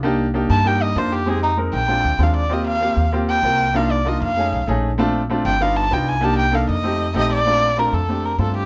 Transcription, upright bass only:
X:1
M:4/4
L:1/8
Q:1/4=194
K:Bb
V:1 name="Upright bass" clef=bass
C,,3 G,,3 F,,2- | F,,3 B,,,2 D,, E,,2- | E,,3 E,,3 C,,2- | C,,3 F,,2 _C,, B,,,2- |
B,,,3 G,,,3 C,,2- | C,,3 F,,3 B,,,2- | B,,,3 F,,3 G,,2 |]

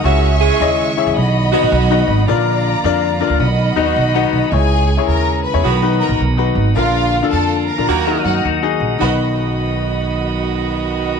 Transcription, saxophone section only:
X:1
M:4/4
L:1/16
Q:"Swing" 1/4=107
K:B
V:1 name="Saxophone section"
[F,F]2 [G,G]4 z4 [F,F]4 z2 | z16 | z8 [D,B,F]3 z4 z | z8 [D,A,F]3 z4 z |
[D,B,F]16 |]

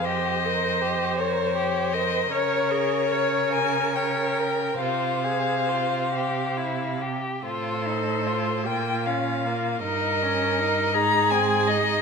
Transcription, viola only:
X:1
M:6/8
L:1/16
Q:3/8=51
K:Fm
V:1 name="Viola"
c12 | B2 A2 B8 | c8- c z3 | =A6 F6 |
B6 A6 |]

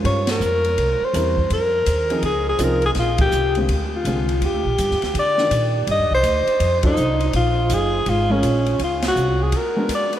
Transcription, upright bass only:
X:1
M:4/4
L:1/8
Q:"Swing" 1/4=165
K:Fphr
V:1 name="Upright bass" clef=bass
=G,,2 F,,2 C,, z =E,,2 | F,,2 E,,2 D,,2 C,,2 | B,,,2 C,,2 =D,,2 C,,2 | (3E,, =D,, B,,, (3=G,, E,, D,, =D,2 B,,2 |
(3=G,, E,, C,, =D,, z F,,2 C,,2 | B,,,2 G,,,2 A,,,2 B,,,2 | D,,2 C,,2 z4 |]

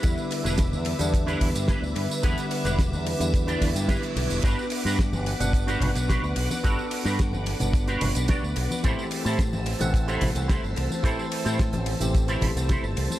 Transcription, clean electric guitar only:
X:1
M:4/4
L:1/16
Q:1/4=109
K:Ador
V:1 name="Clean electric guitar"
[DEGB]2 z [DEGB] z4 z [DEGB] z2 [DEGB] z3 | [DEGB]2 z [DEGB] z4 z [DEGd] z2 [DEGB] z3 | [DFGB]2 z [DFGB] z4 z [DFGB] z2 [DFGB] z3 | [DFGB]2 z [DFGB] z4 z [DFGB] z2 [DFGd] z3 |
[EGAc]2 z [EGAc] z4 z [EGAc] z2 [EGAc] z3 | [EGAc]2 z [EGAc] z4 z [EGAc] z2 [EGAc] z3 |]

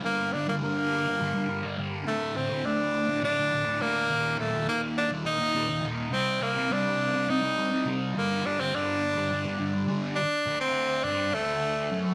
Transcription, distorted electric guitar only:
X:1
M:7/8
L:1/16
Q:1/4=104
K:none
V:1 name="Distorted electric guitar" clef=bass
[G,,D,G,]2 [G,,D,G,] [D,G,] [G,,D,G,]3 [D,G,] [G,,D,G,] [D,G,] [G,,D,G,] [D,G,] [G,,D,G,]2 | [D,,A,,D,]2 [D,,A,,D,] [A,,D,] [D,,A,,D,]3 [A,,D,] [D,,A,,D,] [A,,D,] [D,,A,,D,] [A,,D,] [D,,A,,D,]2 | [_E,,_B,,_E,]2 [E,,B,,E,] [B,,E,] [E,,B,,E,]3 [B,,E,] [E,,B,,E,] [B,,E,] [E,,B,,E,] [B,,E,] [E,,B,,E,]2 | [C,G,C]2 [C,G,C] [G,C] [C,G,C]3 [G,C] [C,G,C] [G,C] [C,G,C] [G,C] [C,G,C]2 |
[G,,D,G,]2 [G,,D,G,] [D,G,] [G,,D,G,]3 [D,G,] [G,,D,G,] [D,G,] [G,,D,G,] [D,G,] [G,,D,G,]2 | z2 D,,4 G,,2 D,,4 ^F,,2 |]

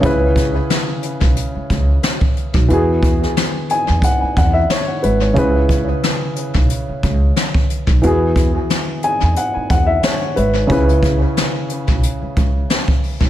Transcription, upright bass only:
X:1
M:4/4
L:1/16
Q:"Swing 16ths" 1/4=90
K:C#m
V:1 name="Upright bass" clef=bass
C,,4 z3 B,,, z2 C,,2 z3 B,,, | E,,4 z3 E,, z2 E,,2 z2 G,,,2 | C,,4 z3 B,,, z2 C,,2 z3 B,,, | E,,4 z3 E,, z2 E,,2 z2 G,,,2 |
C,,4 z3 B,,, z2 C,,2 z3 B,,, |]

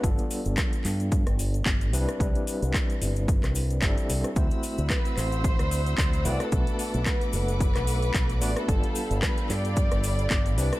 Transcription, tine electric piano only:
X:1
M:4/4
L:1/8
Q:"Swing 16ths" 1/4=111
K:G
V:1 name="Tine electric piano"
[G,B,D=FA]6- [G,B,DFA] [G,CDEB] | [G,CDEB]6 [G,CDEA]2 | [A,CEFc]6- [A,CEFc] [A,CEFB] | [A,B,DFB]6- [A,B,DFB] [A,B,DFB] |
[G,B,DA]6- [G,B,DA] [G,CDEB] |]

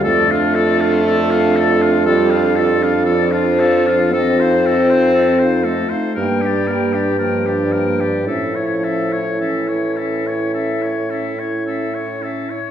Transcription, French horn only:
X:1
M:4/4
L:1/16
Q:1/4=58
K:Dm
V:1 name="French horn" clef=bass
A,8 G,3 z F,4 | C6 A,2 G,4 F,4 | F,4 E,8 z4 |]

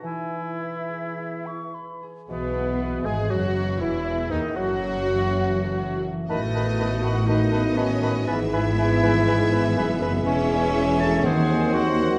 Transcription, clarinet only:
X:1
M:4/4
L:1/8
Q:1/4=121
K:E
V:1 name="Clarinet"
E6- E z | B,3 G F2 E2 | D F6 z | A,3 F D2 C2 |
B, E6 z | [K:C#m] C3 A G2 _G2 |]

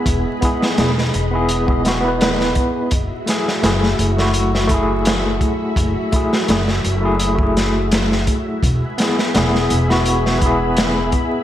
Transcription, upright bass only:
X:1
M:4/4
L:1/8
Q:1/4=84
K:F#dor
V:1 name="Upright bass" clef=bass
E,,, z E,,, E,,,4 z | F,,, z F,,, F,,,4 z | F,,, z F,,, F,,,4 z | E,,, z E,,, E,,,4 z |]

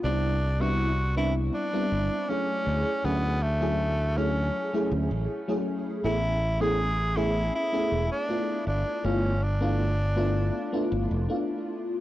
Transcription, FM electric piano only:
X:1
M:4/4
L:1/16
Q:1/4=80
K:Dlyd
V:1 name="FM electric piano"
[=G,B,=CDE]2 z [G,B,CDE]2 z [G,B,CDE]3 [G,B,CDE]3 [F,A,^CE^G]4 | [F,A,CEG]2 z [F,A,CEG]2 z [F,A,CEG]3 [F,A,CEG]3 z [F,A,CEG]3 | [A,B,CEG]2 z [A,B,CEG]2 z [A,B,CEG]3 [A,B,CEG]3 [A,B,DE=F]4 | [A,B,DE=F]2 z [A,B,DEF]2 z [A,B,DEF]3 [A,B,DEF]3 [A,B,DEF]4 |]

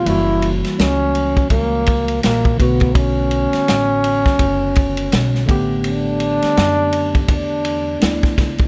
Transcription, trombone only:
X:1
M:4/4
L:1/8
Q:"Swing 16ths" 1/4=83
K:Amix
V:1 name="Trombone"
E z C2 ^A,2 A, B, | C6- C z | D4 D3 z |]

